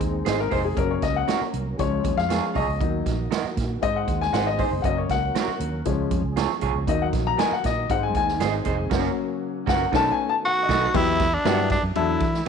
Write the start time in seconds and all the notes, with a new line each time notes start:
Already playing: D#3 G#3 C4 D#4 G#4
0.01 D#2, kick, closed hi-hat
0.25 G#1 G#4 C5 D#5, snare, closed hi-hat, high conga
0.40 A#4
0.51 F1 G#4 C5 D#5, kick, open hi-hat, high conga
0.65 G#4
0.75 F#1 F#3 A#3 C#4 A#4, kick, closed hi-hat, muted conga
0.91 C#5
1.02 C#2 D#5, kick, snare, closed hi-hat, muted conga
1.16 F#5
1.28 F#4 A#4 C#5, snare, closed hi-hat, high conga
1.41 muted fingered electric bass stroke
1.53 C2, closed hi-hat, low conga
1.77 C#2 F3 G#3 C#4 G#4 C#5, kick, closed hi-hat, muted conga
2.04 D#2, kick, closed hi-hat, low conga
2.17 F2 F5, snare
2.29 F4 G#4 C#5, snare, closed hi-hat, high conga
2.54 C2 F4 G#4 C#5 D#5, kick, open hi-hat, high conga
2.68 C#2
2.80 D#2 D#3 F#3 A#3 D#4 F#4, kick, closed hi-hat, muted conga
3.06 A#1, kick, snare, closed hi-hat, muted conga
3.31 F#4 A#4 D#5, snare, closed hi-hat, high conga
3.44 muted fingered electric bass stroke
3.57 A#2, kick, snare, closed hi-hat, muted conga
3.81 G#2 G#3 C4 D#4 G#4 D#5, kick, closed hi-hat, muted conga
3.96 F#5
4.07 D#2, kick, closed hi-hat
4.21 G#5, snare
4.32 G#1 D#4 G#4 C5 F#5, snare, closed hi-hat, high conga
4.47 D#5
4.58 D#4 G#4 C5, kick, open hi-hat, high conga
4.71 F#1
4.82 F#1 F#3 A#3 C#4 A#4 D#5 F#5, kick, closed hi-hat, muted conga
4.98 C#5
5.09 C#2 F#5, kick, snare, closed hi-hat, muted conga
5.35 F#4 A#4 C#5, snare, closed hi-hat, high conga
5.48 muted fingered electric bass stroke
5.60 D#2, closed hi-hat, muted conga, low conga
5.85 C#2 F3 G#3 C#4 G#4, kick, closed hi-hat, muted conga
6.11 F2, kick, closed hi-hat, low conga
6.24 C#2
6.36 F4 G#4 C#5, snare, closed hi-hat, high conga
6.61 C2 F4 G#4 C#5, kick, closed hi-hat, high conga
6.74 C#2
6.87 D#2 D#3 F#3 A#3 D#4 F#4 D#5, kick, closed hi-hat, muted conga
7.02 F#5
7.13 A#1, kick, snare, closed hi-hat, muted conga
7.27 A#5
7.38 F#4 A#4 D#5 G#5, snare, closed hi-hat, high conga
7.51 F#5, muted fingered electric bass stroke
7.64 A#2 D#5, kick, snare, closed hi-hat, muted conga
7.89 G#2 G#3 C4 D#4 G#4 F#5, kick, closed hi-hat, muted conga
8.03 G#5
8.15 D#2 G#5, kick, closed hi-hat
8.28 snare
8.40 G#1 G#4 C5 D#5, snare, closed hi-hat, high conga
8.65 F1 G#4 C5 D#5, kick, closed hi-hat, high conga
8.90 F#1 C#3 F#3 A#3 C#4 F#4 A#4, kick, snare, crash
9.66 F#1 C#4 F#4 A#4 F#5, kick, snare
9.92 B1 D#3 A3 B3 C#4 D#4 A4 B4, kick, snare
9.96 A5
10.12 G#5
10.29 A5
10.46 F#4 F#5
10.63 D#5
10.68 B1 D#4 A4 B4, kick, snare, crash
10.94 E2 F#3 B3 E4 G4, kick, crash, muted conga
11.20 kick, snare, ride, muted conga
11.34 D4
11.45 G2 F#3 G3 B3 E4 F#4 G4, snare, ride, high conga
11.70 D4, kick, snare, ride
11.83 F#2
11.95 E2 F#3 D4 E4 A4, ride, muted conga, low conga
12.20 E3, kick, ride
12.34 snare